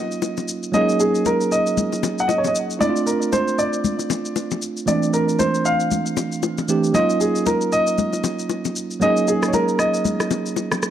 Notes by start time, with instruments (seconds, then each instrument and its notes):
Already playing: tine electric piano F#3 A#3 C#4 D#4 F4, grand piano D#5
0.11 shaker
0.22 high bongo, shaker
0.37 low bongo, shaker
0.48 shaker
0.63 shaker
0.72 tine electric piano F#3 A#3 C#4 D#4, grand piano D#5, low conga, shaker
0.77 tine electric piano G#4
0.89 shaker
1.00 grand piano G#4, shaker
1.15 shaker
1.25 grand piano A#4, high bongo, low conga, shaker
1.41 shaker
1.52 grand piano D#5, shaker
1.67 shaker
1.77 low conga, shaker
1.93 high bongo, shaker
2.03 high bongo, low bongo, shaker
2.19 grand piano F#5, shaker
2.28 grand piano D#5, high bongo, shaker
2.38 grand piano C#5
2.44 grand piano D#5, low bongo, shaker
2.55 shaker
2.70 shaker
2.79 tine electric piano A3 C4 D4 E4, grand piano D5, low conga, shaker
2.83 tine electric piano E4
2.90 tine electric piano F4
2.96 shaker
3.06 grand piano A#4, shaker
3.22 shaker
3.32 grand piano C5, high bongo, low conga, shaker
3.48 shaker
3.59 grand piano D5, shaker
3.73 shaker
3.84 low conga, shaker
3.99 high bongo, shaker
4.10 high bongo, low bongo, shaker
4.25 shaker
4.36 high bongo, shaker
4.51 low bongo, shaker
4.62 shaker
4.77 shaker
4.86 tine electric piano E3 A3 C4 D4, grand piano D5, low conga, shaker
5.03 shaker
5.13 grand piano A#4, shaker
5.29 shaker
5.39 grand piano C5, high bongo, low conga, shaker
5.55 shaker
5.65 grand piano F5, shaker
5.80 shaker
5.91 low conga, shaker
6.06 shaker
6.17 high bongo, low bongo, shaker
6.32 shaker
6.43 high bongo, shaker
6.58 low bongo, shaker
6.68 tine electric piano E3 A3 C4 D4 G4, shaker
6.84 shaker
6.93 tine electric piano F#3 A#3 C#4 D#4 F4, grand piano D#5, low conga, shaker
7.10 shaker
7.21 grand piano G#4, shaker
7.35 shaker
7.46 grand piano A#4, high bongo, low conga, shaker
7.61 shaker
7.72 grand piano D#5, shaker
7.87 shaker
7.98 low conga, shaker
8.13 high bongo, shaker
8.24 high bongo, low bongo, shaker
8.39 shaker
8.50 high bongo, shaker
8.65 low bongo, shaker
8.76 shaker
8.91 shaker
9.00 tine electric piano F#3 A#3 C#4 D#4, grand piano D#5, low conga, shaker
9.04 tine electric piano G#4
9.17 shaker
9.28 grand piano G#4, shaker
9.43 cross-stick, shaker
9.48 grand piano C#5
9.53 grand piano A#4, high bongo, low conga, shaker
9.68 shaker
9.79 grand piano D#5, cross-stick, shaker
9.94 shaker
10.05 low conga, shaker
10.20 cross-stick, high bongo, shaker
10.31 high bongo, low bongo, shaker
10.46 shaker
10.56 high bongo, shaker
10.72 cross-stick, low bongo, shaker
10.83 cross-stick, shaker